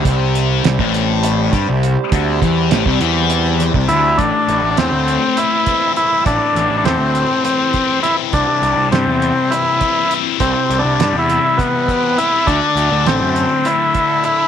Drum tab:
HH |x-x-x-x-x-x-x-|x-x-x-x-x-x-x-|x-x-x-x-x-x-x-|x-x-x-x-x-x-x-|
SD |----o-----o---|----o-----o---|----o---------|--o-o-------o-|
BD |o----o----o---|o-o--o-----o--|o---------o---|o---------o---|

HH |x-x-x-x-x-x-x-|x-x-x-x-x-x-x-|x-x-x-x-x-x-x-|
SD |----o---------|----o---------|----o---------|
BD |o---------o---|o-------o-o---|o---------o---|